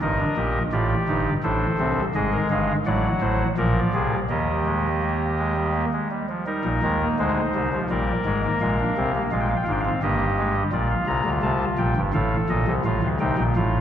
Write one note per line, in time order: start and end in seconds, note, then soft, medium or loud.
0.02 0.24 G1 medium
0.02 0.24 G2 medium
0.02 0.17 D#4 medium
0.02 0.63 A#4 medium
0.02 0.63 D#5 medium
0.20 0.35 D4 medium
0.37 0.59 A#1 medium
0.37 0.59 A#2 medium
0.37 0.59 G4 medium
0.72 0.95 A1 medium
0.72 0.95 A2 medium
0.72 0.95 F4 medium
0.72 1.34 G4 medium
0.72 1.34 D5 medium
1.08 1.30 G1 medium
1.08 1.30 G2 medium
1.08 1.30 D#4 medium
1.44 1.66 A1 medium
1.44 1.66 A2 medium
1.44 1.66 D4 medium
1.44 2.05 A4 medium
1.44 2.05 C5 medium
1.79 2.01 C2 medium
1.79 2.01 C3 medium
1.79 2.01 C4 medium
2.15 2.37 G#1 medium
2.15 2.37 G#2 medium
2.15 2.76 G#3 medium
2.15 2.30 G#4 medium
2.15 2.37 D#5 medium
2.33 2.48 A#4 medium
2.51 2.73 G1 medium
2.51 2.73 G2 medium
2.51 2.73 D#5 medium
2.51 2.73 F5 medium
2.86 3.09 A1 medium
2.86 3.09 A2 medium
2.86 3.48 F#3 medium
2.86 3.08 D5 medium
2.86 3.48 F#5 medium
3.21 3.44 A1 medium
3.21 3.44 A2 medium
3.21 3.44 C5 medium
3.58 3.80 A#1 medium
3.58 3.80 A#2 medium
3.58 4.20 F3 medium
3.58 3.80 A#4 medium
3.58 4.20 D5 medium
3.94 4.16 C2 medium
3.94 4.16 C3 medium
3.94 4.16 G#4 medium
4.29 5.85 D#2 medium
4.29 5.85 D#3 medium
4.29 4.52 G3 medium
4.29 5.85 G4 medium
4.29 5.85 D#5 medium
4.66 4.88 G#3 medium
5.02 5.25 A#3 medium
5.38 5.54 G#3 medium
5.56 5.72 G3 soft
5.74 5.90 A#3 medium
5.93 6.08 G#3 medium
6.11 6.26 G3 medium
6.29 6.44 F3 medium
6.46 6.69 G3 medium
6.46 7.70 D#4 medium
6.46 7.08 A#4 medium
6.65 6.80 A#1 medium
6.65 6.80 A#2 medium
6.83 7.05 D#2 medium
6.83 7.05 D#3 medium
6.83 6.98 G#3 medium
7.01 7.16 A#3 medium
7.19 7.41 D2 medium
7.19 7.41 D3 medium
7.19 7.41 G#3 medium
7.19 7.80 C5 medium
7.55 7.77 C2 medium
7.55 7.77 C3 medium
7.55 7.70 G3 medium
7.73 7.88 F3 medium
7.90 8.12 A#1 medium
7.90 8.12 A#2 medium
7.90 8.12 G3 medium
7.90 9.12 A#4 medium
7.90 8.51 D5 medium
8.25 8.47 G#1 medium
8.25 8.47 G#2 medium
8.25 8.41 G#3 medium
8.44 8.58 A#3 medium
8.61 8.83 A#1 medium
8.61 8.83 A#2 medium
8.61 8.76 G#3 medium
8.61 9.22 F5 medium
8.79 8.94 D4 medium
8.97 9.19 C2 medium
8.97 9.19 C3 medium
8.97 9.12 C4 medium
9.15 9.30 A#3 medium
9.32 9.54 A#1 medium
9.32 9.54 A#2 medium
9.32 9.54 G#3 medium
9.32 9.93 F4 medium
9.32 9.40 F5 medium
9.41 9.48 G5 medium
9.48 9.56 F5 medium
9.56 9.64 G5 medium
9.64 9.89 G#1 medium
9.64 9.89 G#2 medium
9.64 9.83 D4 medium
9.64 9.72 F5 soft
9.72 9.80 G5 medium
9.80 10.00 F5 medium
9.85 10.00 C4 medium
10.03 10.63 G1 medium
10.03 10.63 G2 medium
10.03 10.25 A#3 medium
10.03 10.63 G4 medium
10.03 10.63 D#5 medium
10.38 10.53 G#3 medium
10.55 10.70 G3 medium
10.73 10.95 A#1 medium
10.73 10.94 A#2 medium
10.73 11.94 F4 medium
10.73 10.88 D5 medium
10.90 11.05 F5 medium
11.07 11.23 C2 medium
11.07 11.23 C3 medium
11.07 11.29 A#5 medium
11.25 11.40 D2 medium
11.25 11.40 D3 medium
11.42 11.65 C2 medium
11.42 11.65 C3 medium
11.42 11.65 A5 medium
11.78 11.94 A#1 medium
11.78 11.94 A#2 medium
11.78 12.00 G5 medium
11.96 12.12 G1 medium
11.96 12.12 G2 medium
12.14 12.36 A1 medium
12.14 12.36 A2 medium
12.14 12.75 A4 medium
12.14 12.36 F5 medium
12.49 12.65 A#1 medium
12.49 12.65 A#2 medium
12.49 12.72 D#5 medium
12.67 12.83 C2 medium
12.67 12.83 C3 medium
12.85 13.00 A1 medium
12.85 13.00 A2 medium
12.85 13.07 F4 medium
12.85 13.07 F5 medium
13.03 13.18 D2 medium
13.03 13.18 D3 medium
13.20 13.36 C2 medium
13.20 13.36 C3 medium
13.20 13.42 D#4 medium
13.20 13.43 G5 medium
13.38 13.54 A#1 medium
13.38 13.54 A#2 medium
13.56 13.79 A1 medium
13.56 13.78 A2 medium
13.56 13.81 F4 medium
13.56 13.79 F5 medium